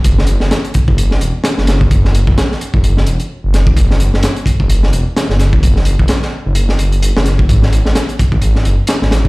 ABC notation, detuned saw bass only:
X:1
M:4/4
L:1/16
Q:"Swing 16ths" 1/4=129
K:G#phr
V:1 name="Detuned saw bass" clef=bass
F,,,3 F,,, z3 F,,,3 E,,, z2 F,,,3 | F,,,3 F,,, z3 F,,,3 E,,, z2 F,,,3 | F,,,3 F,,, z3 F,,,3 E,,, z2 F,,,3 | F,,,3 F,,, z3 F,,,3 F,,,3 F,,,3 |
G,,,3 G,,, z3 G,,,3 F,,, z2 G,,,3 |]